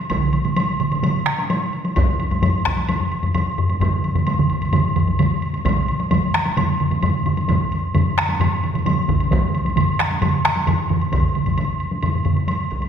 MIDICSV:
0, 0, Header, 1, 3, 480
1, 0, Start_track
1, 0, Tempo, 462963
1, 103, Time_signature, 4, 2, 24, 8
1, 6342, Tempo, 454201
1, 13496, End_track
2, 0, Start_track
2, 0, Title_t, "Taiko and cinematic ensemble drums"
2, 103, Note_on_c, 9, 48, 65
2, 104, Note_on_c, 9, 47, 71
2, 107, Note_on_c, 9, 41, 97
2, 207, Note_off_c, 9, 48, 0
2, 208, Note_off_c, 9, 47, 0
2, 211, Note_off_c, 9, 41, 0
2, 223, Note_on_c, 9, 47, 68
2, 327, Note_off_c, 9, 47, 0
2, 344, Note_on_c, 9, 47, 71
2, 346, Note_on_c, 9, 48, 47
2, 447, Note_off_c, 9, 47, 0
2, 450, Note_off_c, 9, 48, 0
2, 465, Note_on_c, 9, 48, 54
2, 470, Note_on_c, 9, 47, 68
2, 569, Note_off_c, 9, 48, 0
2, 573, Note_off_c, 9, 47, 0
2, 585, Note_on_c, 9, 48, 71
2, 688, Note_off_c, 9, 48, 0
2, 827, Note_on_c, 9, 47, 98
2, 931, Note_off_c, 9, 47, 0
2, 948, Note_on_c, 9, 48, 57
2, 1052, Note_off_c, 9, 48, 0
2, 1063, Note_on_c, 9, 47, 101
2, 1067, Note_on_c, 9, 48, 74
2, 1166, Note_off_c, 9, 47, 0
2, 1171, Note_off_c, 9, 48, 0
2, 1309, Note_on_c, 9, 37, 75
2, 1413, Note_off_c, 9, 37, 0
2, 1436, Note_on_c, 9, 48, 64
2, 1539, Note_off_c, 9, 48, 0
2, 1554, Note_on_c, 9, 48, 78
2, 1658, Note_off_c, 9, 48, 0
2, 1911, Note_on_c, 9, 48, 60
2, 2014, Note_off_c, 9, 48, 0
2, 2035, Note_on_c, 9, 45, 88
2, 2036, Note_on_c, 9, 48, 76
2, 2040, Note_on_c, 9, 41, 107
2, 2139, Note_off_c, 9, 45, 0
2, 2140, Note_off_c, 9, 48, 0
2, 2144, Note_off_c, 9, 41, 0
2, 2275, Note_on_c, 9, 48, 52
2, 2379, Note_off_c, 9, 48, 0
2, 2394, Note_on_c, 9, 45, 74
2, 2399, Note_on_c, 9, 48, 62
2, 2498, Note_off_c, 9, 45, 0
2, 2503, Note_off_c, 9, 48, 0
2, 2510, Note_on_c, 9, 45, 99
2, 2515, Note_on_c, 9, 48, 76
2, 2614, Note_off_c, 9, 45, 0
2, 2619, Note_off_c, 9, 48, 0
2, 2750, Note_on_c, 9, 37, 76
2, 2765, Note_on_c, 9, 41, 73
2, 2854, Note_off_c, 9, 37, 0
2, 2869, Note_off_c, 9, 41, 0
2, 2874, Note_on_c, 9, 48, 58
2, 2977, Note_off_c, 9, 48, 0
2, 2994, Note_on_c, 9, 48, 74
2, 2997, Note_on_c, 9, 45, 74
2, 3097, Note_off_c, 9, 48, 0
2, 3101, Note_off_c, 9, 45, 0
2, 3110, Note_on_c, 9, 45, 74
2, 3214, Note_off_c, 9, 45, 0
2, 3233, Note_on_c, 9, 45, 65
2, 3337, Note_off_c, 9, 45, 0
2, 3352, Note_on_c, 9, 45, 68
2, 3359, Note_on_c, 9, 48, 60
2, 3456, Note_off_c, 9, 45, 0
2, 3462, Note_off_c, 9, 48, 0
2, 3470, Note_on_c, 9, 45, 93
2, 3476, Note_on_c, 9, 48, 72
2, 3573, Note_off_c, 9, 45, 0
2, 3580, Note_off_c, 9, 48, 0
2, 3712, Note_on_c, 9, 45, 99
2, 3816, Note_off_c, 9, 45, 0
2, 3831, Note_on_c, 9, 48, 53
2, 3935, Note_off_c, 9, 48, 0
2, 3941, Note_on_c, 9, 45, 88
2, 3950, Note_on_c, 9, 48, 63
2, 3956, Note_on_c, 9, 47, 91
2, 3959, Note_on_c, 9, 41, 81
2, 4045, Note_off_c, 9, 45, 0
2, 4053, Note_off_c, 9, 48, 0
2, 4059, Note_off_c, 9, 47, 0
2, 4062, Note_off_c, 9, 41, 0
2, 4192, Note_on_c, 9, 48, 49
2, 4296, Note_off_c, 9, 48, 0
2, 4306, Note_on_c, 9, 45, 97
2, 4309, Note_on_c, 9, 48, 52
2, 4312, Note_on_c, 9, 47, 93
2, 4410, Note_off_c, 9, 45, 0
2, 4413, Note_off_c, 9, 48, 0
2, 4416, Note_off_c, 9, 47, 0
2, 4429, Note_on_c, 9, 48, 70
2, 4532, Note_off_c, 9, 48, 0
2, 4550, Note_on_c, 9, 45, 95
2, 4554, Note_on_c, 9, 47, 97
2, 4654, Note_off_c, 9, 45, 0
2, 4658, Note_off_c, 9, 47, 0
2, 4676, Note_on_c, 9, 41, 61
2, 4779, Note_off_c, 9, 41, 0
2, 4789, Note_on_c, 9, 48, 54
2, 4892, Note_off_c, 9, 48, 0
2, 4901, Note_on_c, 9, 48, 69
2, 4904, Note_on_c, 9, 45, 102
2, 4909, Note_on_c, 9, 47, 99
2, 5005, Note_off_c, 9, 48, 0
2, 5008, Note_off_c, 9, 45, 0
2, 5013, Note_off_c, 9, 47, 0
2, 5147, Note_on_c, 9, 45, 93
2, 5147, Note_on_c, 9, 47, 97
2, 5153, Note_on_c, 9, 41, 59
2, 5251, Note_off_c, 9, 45, 0
2, 5251, Note_off_c, 9, 47, 0
2, 5256, Note_off_c, 9, 41, 0
2, 5263, Note_on_c, 9, 48, 57
2, 5366, Note_off_c, 9, 48, 0
2, 5384, Note_on_c, 9, 48, 65
2, 5385, Note_on_c, 9, 45, 94
2, 5388, Note_on_c, 9, 47, 96
2, 5488, Note_off_c, 9, 48, 0
2, 5489, Note_off_c, 9, 45, 0
2, 5492, Note_off_c, 9, 47, 0
2, 5737, Note_on_c, 9, 48, 52
2, 5841, Note_off_c, 9, 48, 0
2, 5858, Note_on_c, 9, 48, 82
2, 5862, Note_on_c, 9, 45, 91
2, 5863, Note_on_c, 9, 41, 90
2, 5865, Note_on_c, 9, 47, 95
2, 5962, Note_off_c, 9, 48, 0
2, 5966, Note_off_c, 9, 41, 0
2, 5966, Note_off_c, 9, 45, 0
2, 5969, Note_off_c, 9, 47, 0
2, 6215, Note_on_c, 9, 48, 62
2, 6319, Note_off_c, 9, 48, 0
2, 6337, Note_on_c, 9, 48, 81
2, 6340, Note_on_c, 9, 47, 96
2, 6341, Note_on_c, 9, 45, 96
2, 6443, Note_off_c, 9, 48, 0
2, 6445, Note_off_c, 9, 47, 0
2, 6447, Note_off_c, 9, 45, 0
2, 6581, Note_on_c, 9, 37, 75
2, 6582, Note_off_c, 9, 37, 0
2, 6582, Note_on_c, 9, 37, 72
2, 6688, Note_off_c, 9, 37, 0
2, 6701, Note_on_c, 9, 48, 62
2, 6806, Note_off_c, 9, 48, 0
2, 6820, Note_on_c, 9, 48, 74
2, 6824, Note_on_c, 9, 45, 97
2, 6825, Note_on_c, 9, 47, 99
2, 6925, Note_off_c, 9, 48, 0
2, 6929, Note_off_c, 9, 45, 0
2, 6931, Note_off_c, 9, 47, 0
2, 7067, Note_on_c, 9, 45, 69
2, 7069, Note_on_c, 9, 47, 65
2, 7173, Note_off_c, 9, 45, 0
2, 7175, Note_off_c, 9, 47, 0
2, 7184, Note_on_c, 9, 48, 61
2, 7187, Note_on_c, 9, 45, 71
2, 7192, Note_on_c, 9, 47, 71
2, 7290, Note_off_c, 9, 48, 0
2, 7293, Note_off_c, 9, 45, 0
2, 7298, Note_off_c, 9, 47, 0
2, 7304, Note_on_c, 9, 48, 72
2, 7305, Note_on_c, 9, 45, 98
2, 7306, Note_on_c, 9, 47, 96
2, 7409, Note_off_c, 9, 48, 0
2, 7411, Note_off_c, 9, 45, 0
2, 7412, Note_off_c, 9, 47, 0
2, 7550, Note_on_c, 9, 47, 92
2, 7555, Note_on_c, 9, 45, 95
2, 7656, Note_off_c, 9, 47, 0
2, 7660, Note_off_c, 9, 45, 0
2, 7670, Note_on_c, 9, 48, 54
2, 7775, Note_off_c, 9, 48, 0
2, 7788, Note_on_c, 9, 48, 67
2, 7796, Note_on_c, 9, 47, 92
2, 7798, Note_on_c, 9, 41, 92
2, 7798, Note_on_c, 9, 45, 93
2, 7894, Note_off_c, 9, 48, 0
2, 7902, Note_off_c, 9, 47, 0
2, 7903, Note_off_c, 9, 41, 0
2, 7903, Note_off_c, 9, 45, 0
2, 8274, Note_on_c, 9, 47, 99
2, 8274, Note_on_c, 9, 48, 67
2, 8280, Note_on_c, 9, 45, 101
2, 8380, Note_off_c, 9, 47, 0
2, 8380, Note_off_c, 9, 48, 0
2, 8386, Note_off_c, 9, 45, 0
2, 8520, Note_on_c, 9, 37, 75
2, 8521, Note_off_c, 9, 37, 0
2, 8521, Note_on_c, 9, 37, 77
2, 8627, Note_off_c, 9, 37, 0
2, 8636, Note_on_c, 9, 48, 54
2, 8741, Note_off_c, 9, 48, 0
2, 8755, Note_on_c, 9, 48, 67
2, 8758, Note_on_c, 9, 47, 97
2, 8760, Note_on_c, 9, 45, 95
2, 8861, Note_off_c, 9, 48, 0
2, 8864, Note_off_c, 9, 47, 0
2, 8866, Note_off_c, 9, 45, 0
2, 9001, Note_on_c, 9, 47, 70
2, 9002, Note_on_c, 9, 45, 71
2, 9107, Note_off_c, 9, 45, 0
2, 9107, Note_off_c, 9, 47, 0
2, 9116, Note_on_c, 9, 48, 56
2, 9121, Note_on_c, 9, 47, 70
2, 9127, Note_on_c, 9, 45, 69
2, 9221, Note_off_c, 9, 48, 0
2, 9226, Note_off_c, 9, 47, 0
2, 9232, Note_off_c, 9, 45, 0
2, 9237, Note_on_c, 9, 48, 77
2, 9239, Note_on_c, 9, 47, 97
2, 9243, Note_on_c, 9, 45, 93
2, 9343, Note_off_c, 9, 48, 0
2, 9345, Note_off_c, 9, 47, 0
2, 9349, Note_off_c, 9, 45, 0
2, 9478, Note_on_c, 9, 47, 98
2, 9482, Note_on_c, 9, 41, 74
2, 9484, Note_on_c, 9, 45, 94
2, 9584, Note_off_c, 9, 47, 0
2, 9587, Note_off_c, 9, 41, 0
2, 9589, Note_off_c, 9, 45, 0
2, 9597, Note_on_c, 9, 48, 55
2, 9703, Note_off_c, 9, 48, 0
2, 9716, Note_on_c, 9, 47, 99
2, 9719, Note_on_c, 9, 48, 71
2, 9721, Note_on_c, 9, 41, 104
2, 9724, Note_on_c, 9, 45, 90
2, 9822, Note_off_c, 9, 47, 0
2, 9825, Note_off_c, 9, 48, 0
2, 9827, Note_off_c, 9, 41, 0
2, 9830, Note_off_c, 9, 45, 0
2, 10076, Note_on_c, 9, 48, 58
2, 10182, Note_off_c, 9, 48, 0
2, 10195, Note_on_c, 9, 48, 68
2, 10201, Note_on_c, 9, 47, 103
2, 10203, Note_on_c, 9, 45, 99
2, 10300, Note_off_c, 9, 48, 0
2, 10307, Note_off_c, 9, 47, 0
2, 10309, Note_off_c, 9, 45, 0
2, 10440, Note_on_c, 9, 37, 73
2, 10445, Note_off_c, 9, 37, 0
2, 10445, Note_on_c, 9, 37, 77
2, 10551, Note_off_c, 9, 37, 0
2, 10556, Note_on_c, 9, 48, 58
2, 10661, Note_off_c, 9, 48, 0
2, 10673, Note_on_c, 9, 48, 65
2, 10679, Note_on_c, 9, 45, 103
2, 10679, Note_on_c, 9, 47, 102
2, 10779, Note_off_c, 9, 48, 0
2, 10785, Note_off_c, 9, 45, 0
2, 10785, Note_off_c, 9, 47, 0
2, 10919, Note_on_c, 9, 37, 73
2, 10922, Note_off_c, 9, 37, 0
2, 10922, Note_on_c, 9, 37, 74
2, 11027, Note_off_c, 9, 37, 0
2, 11035, Note_on_c, 9, 48, 56
2, 11140, Note_off_c, 9, 48, 0
2, 11152, Note_on_c, 9, 48, 69
2, 11158, Note_on_c, 9, 47, 93
2, 11159, Note_on_c, 9, 45, 92
2, 11257, Note_off_c, 9, 48, 0
2, 11264, Note_off_c, 9, 47, 0
2, 11265, Note_off_c, 9, 45, 0
2, 11399, Note_on_c, 9, 45, 95
2, 11399, Note_on_c, 9, 47, 97
2, 11504, Note_off_c, 9, 45, 0
2, 11505, Note_off_c, 9, 47, 0
2, 11628, Note_on_c, 9, 48, 68
2, 11636, Note_on_c, 9, 47, 96
2, 11641, Note_on_c, 9, 41, 91
2, 11643, Note_on_c, 9, 45, 88
2, 11733, Note_off_c, 9, 48, 0
2, 11742, Note_off_c, 9, 47, 0
2, 11747, Note_off_c, 9, 41, 0
2, 11748, Note_off_c, 9, 45, 0
2, 11879, Note_on_c, 9, 47, 69
2, 11881, Note_on_c, 9, 45, 69
2, 11984, Note_off_c, 9, 47, 0
2, 11987, Note_off_c, 9, 45, 0
2, 11991, Note_on_c, 9, 48, 53
2, 11997, Note_on_c, 9, 47, 75
2, 12002, Note_on_c, 9, 45, 73
2, 12096, Note_off_c, 9, 48, 0
2, 12103, Note_off_c, 9, 47, 0
2, 12107, Note_off_c, 9, 45, 0
2, 12110, Note_on_c, 9, 48, 65
2, 12215, Note_off_c, 9, 48, 0
2, 12468, Note_on_c, 9, 48, 52
2, 12573, Note_off_c, 9, 48, 0
2, 12587, Note_on_c, 9, 48, 65
2, 12589, Note_on_c, 9, 47, 69
2, 12594, Note_on_c, 9, 45, 71
2, 12693, Note_off_c, 9, 48, 0
2, 12695, Note_off_c, 9, 47, 0
2, 12700, Note_off_c, 9, 45, 0
2, 12710, Note_on_c, 9, 47, 69
2, 12714, Note_on_c, 9, 45, 71
2, 12816, Note_off_c, 9, 47, 0
2, 12819, Note_off_c, 9, 45, 0
2, 12828, Note_on_c, 9, 45, 90
2, 12830, Note_on_c, 9, 47, 89
2, 12933, Note_off_c, 9, 45, 0
2, 12936, Note_off_c, 9, 47, 0
2, 12946, Note_on_c, 9, 48, 56
2, 13051, Note_off_c, 9, 48, 0
2, 13063, Note_on_c, 9, 48, 69
2, 13168, Note_off_c, 9, 48, 0
2, 13311, Note_on_c, 9, 41, 68
2, 13416, Note_off_c, 9, 41, 0
2, 13419, Note_on_c, 9, 48, 53
2, 13496, Note_off_c, 9, 48, 0
2, 13496, End_track
3, 0, Start_track
3, 0, Title_t, "Drums"
3, 101, Note_on_c, 9, 76, 56
3, 205, Note_off_c, 9, 76, 0
3, 341, Note_on_c, 9, 76, 46
3, 444, Note_off_c, 9, 76, 0
3, 464, Note_on_c, 9, 76, 43
3, 568, Note_off_c, 9, 76, 0
3, 586, Note_on_c, 9, 76, 57
3, 689, Note_off_c, 9, 76, 0
3, 828, Note_on_c, 9, 76, 45
3, 932, Note_off_c, 9, 76, 0
3, 951, Note_on_c, 9, 76, 43
3, 1055, Note_off_c, 9, 76, 0
3, 1074, Note_on_c, 9, 76, 59
3, 1178, Note_off_c, 9, 76, 0
3, 1436, Note_on_c, 9, 76, 44
3, 1540, Note_off_c, 9, 76, 0
3, 1555, Note_on_c, 9, 76, 60
3, 1659, Note_off_c, 9, 76, 0
3, 1794, Note_on_c, 9, 76, 44
3, 1898, Note_off_c, 9, 76, 0
3, 1915, Note_on_c, 9, 76, 43
3, 2018, Note_off_c, 9, 76, 0
3, 2033, Note_on_c, 9, 76, 55
3, 2136, Note_off_c, 9, 76, 0
3, 2278, Note_on_c, 9, 76, 47
3, 2381, Note_off_c, 9, 76, 0
3, 2398, Note_on_c, 9, 76, 43
3, 2502, Note_off_c, 9, 76, 0
3, 2517, Note_on_c, 9, 76, 57
3, 2621, Note_off_c, 9, 76, 0
3, 2755, Note_on_c, 9, 76, 45
3, 2858, Note_off_c, 9, 76, 0
3, 2874, Note_on_c, 9, 76, 42
3, 2978, Note_off_c, 9, 76, 0
3, 2992, Note_on_c, 9, 76, 54
3, 3095, Note_off_c, 9, 76, 0
3, 3231, Note_on_c, 9, 76, 43
3, 3335, Note_off_c, 9, 76, 0
3, 3349, Note_on_c, 9, 76, 40
3, 3453, Note_off_c, 9, 76, 0
3, 3468, Note_on_c, 9, 76, 54
3, 3572, Note_off_c, 9, 76, 0
3, 3715, Note_on_c, 9, 76, 41
3, 3818, Note_off_c, 9, 76, 0
3, 3831, Note_on_c, 9, 76, 40
3, 3935, Note_off_c, 9, 76, 0
3, 3954, Note_on_c, 9, 76, 52
3, 4058, Note_off_c, 9, 76, 0
3, 4190, Note_on_c, 9, 76, 42
3, 4294, Note_off_c, 9, 76, 0
3, 4309, Note_on_c, 9, 76, 41
3, 4413, Note_off_c, 9, 76, 0
3, 4423, Note_on_c, 9, 76, 56
3, 4527, Note_off_c, 9, 76, 0
3, 4662, Note_on_c, 9, 76, 44
3, 4766, Note_off_c, 9, 76, 0
3, 4789, Note_on_c, 9, 76, 42
3, 4893, Note_off_c, 9, 76, 0
3, 4901, Note_on_c, 9, 76, 57
3, 5005, Note_off_c, 9, 76, 0
3, 5143, Note_on_c, 9, 76, 44
3, 5246, Note_off_c, 9, 76, 0
3, 5262, Note_on_c, 9, 76, 42
3, 5365, Note_off_c, 9, 76, 0
3, 5382, Note_on_c, 9, 76, 57
3, 5486, Note_off_c, 9, 76, 0
3, 5622, Note_on_c, 9, 76, 43
3, 5725, Note_off_c, 9, 76, 0
3, 5743, Note_on_c, 9, 76, 44
3, 5847, Note_off_c, 9, 76, 0
3, 5864, Note_on_c, 9, 76, 59
3, 5968, Note_off_c, 9, 76, 0
3, 6100, Note_on_c, 9, 76, 48
3, 6204, Note_off_c, 9, 76, 0
3, 6219, Note_on_c, 9, 76, 45
3, 6322, Note_off_c, 9, 76, 0
3, 6335, Note_on_c, 9, 76, 54
3, 6440, Note_off_c, 9, 76, 0
3, 6583, Note_on_c, 9, 76, 44
3, 6689, Note_off_c, 9, 76, 0
3, 6699, Note_on_c, 9, 76, 45
3, 6805, Note_off_c, 9, 76, 0
3, 6824, Note_on_c, 9, 76, 58
3, 6930, Note_off_c, 9, 76, 0
3, 7065, Note_on_c, 9, 76, 42
3, 7171, Note_off_c, 9, 76, 0
3, 7184, Note_on_c, 9, 76, 45
3, 7290, Note_off_c, 9, 76, 0
3, 7302, Note_on_c, 9, 76, 55
3, 7408, Note_off_c, 9, 76, 0
3, 7548, Note_on_c, 9, 76, 42
3, 7654, Note_off_c, 9, 76, 0
3, 7670, Note_on_c, 9, 76, 43
3, 7775, Note_off_c, 9, 76, 0
3, 7790, Note_on_c, 9, 76, 53
3, 7896, Note_off_c, 9, 76, 0
3, 8036, Note_on_c, 9, 76, 44
3, 8142, Note_off_c, 9, 76, 0
3, 8275, Note_on_c, 9, 76, 56
3, 8380, Note_off_c, 9, 76, 0
3, 8520, Note_on_c, 9, 76, 46
3, 8626, Note_off_c, 9, 76, 0
3, 8644, Note_on_c, 9, 76, 41
3, 8750, Note_off_c, 9, 76, 0
3, 8763, Note_on_c, 9, 76, 57
3, 8868, Note_off_c, 9, 76, 0
3, 9004, Note_on_c, 9, 76, 46
3, 9110, Note_off_c, 9, 76, 0
3, 9127, Note_on_c, 9, 76, 45
3, 9233, Note_off_c, 9, 76, 0
3, 9244, Note_on_c, 9, 76, 59
3, 9350, Note_off_c, 9, 76, 0
3, 9484, Note_on_c, 9, 76, 42
3, 9589, Note_off_c, 9, 76, 0
3, 9604, Note_on_c, 9, 76, 45
3, 9710, Note_off_c, 9, 76, 0
3, 9727, Note_on_c, 9, 76, 55
3, 9832, Note_off_c, 9, 76, 0
3, 9966, Note_on_c, 9, 76, 46
3, 10072, Note_off_c, 9, 76, 0
3, 10086, Note_on_c, 9, 76, 45
3, 10192, Note_off_c, 9, 76, 0
3, 10203, Note_on_c, 9, 76, 58
3, 10309, Note_off_c, 9, 76, 0
3, 10561, Note_on_c, 9, 76, 43
3, 10667, Note_off_c, 9, 76, 0
3, 10677, Note_on_c, 9, 76, 60
3, 10782, Note_off_c, 9, 76, 0
3, 10919, Note_on_c, 9, 76, 42
3, 11025, Note_off_c, 9, 76, 0
3, 11036, Note_on_c, 9, 76, 42
3, 11141, Note_off_c, 9, 76, 0
3, 11157, Note_on_c, 9, 76, 58
3, 11262, Note_off_c, 9, 76, 0
3, 11389, Note_on_c, 9, 76, 43
3, 11495, Note_off_c, 9, 76, 0
3, 11518, Note_on_c, 9, 76, 43
3, 11623, Note_off_c, 9, 76, 0
3, 11636, Note_on_c, 9, 76, 53
3, 11742, Note_off_c, 9, 76, 0
3, 11874, Note_on_c, 9, 76, 43
3, 11980, Note_off_c, 9, 76, 0
3, 11990, Note_on_c, 9, 76, 42
3, 12096, Note_off_c, 9, 76, 0
3, 12112, Note_on_c, 9, 76, 54
3, 12217, Note_off_c, 9, 76, 0
3, 12349, Note_on_c, 9, 76, 41
3, 12454, Note_off_c, 9, 76, 0
3, 12586, Note_on_c, 9, 76, 51
3, 12692, Note_off_c, 9, 76, 0
3, 12822, Note_on_c, 9, 76, 40
3, 12927, Note_off_c, 9, 76, 0
3, 12946, Note_on_c, 9, 76, 39
3, 13052, Note_off_c, 9, 76, 0
3, 13067, Note_on_c, 9, 76, 56
3, 13173, Note_off_c, 9, 76, 0
3, 13307, Note_on_c, 9, 76, 37
3, 13412, Note_off_c, 9, 76, 0
3, 13425, Note_on_c, 9, 76, 43
3, 13496, Note_off_c, 9, 76, 0
3, 13496, End_track
0, 0, End_of_file